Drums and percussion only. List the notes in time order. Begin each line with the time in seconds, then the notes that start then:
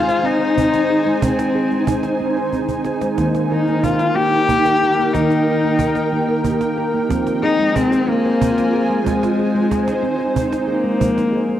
0.09 cajon slap
0.41 cajon slap
0.58 cajon bass
0.74 cajon slap
0.90 cajon slap
1.06 cajon slap
1.22 cajon bass
1.39 cajon slap
1.71 cajon slap
1.87 cajon bass
2.03 cajon slap
2.20 cajon slap
2.37 cajon slap
2.53 cajon bass
2.68 cajon bass
2.84 cajon slap
3.01 cajon slap
3.18 cajon bass, cajon slap
3.35 cajon slap
3.51 cajon slap
3.67 cajon slap
3.84 cajon bass
3.99 cajon slap
4.33 cajon slap
4.49 cajon bass
4.65 cajon slap
4.98 cajon slap
5.15 cajon bass, cajon slap
5.30 cajon slap
5.47 cajon slap
5.63 cajon slap
5.79 cajon bass
5.95 cajon slap
6.29 cajon slap
6.44 cajon bass
6.61 cajon slap
6.77 cajon slap
6.94 cajon slap
7.11 cajon bass, cajon slap
7.27 cajon slap
7.60 cajon slap
7.76 cajon bass
7.92 cajon slap
8.25 cajon slap
8.41 cajon bass
8.58 cajon slap
8.74 cajon slap
8.91 cajon slap
9.06 cajon bass, cajon slap
9.23 cajon slap
9.39 cajon slap
9.56 cajon slap
9.71 cajon bass, cajon slap
9.88 cajon slap
10.04 cajon slap
10.20 cajon slap
10.36 cajon bass
10.53 cajon slap
11.01 cajon bass
11.18 cajon slap
11.33 cajon slap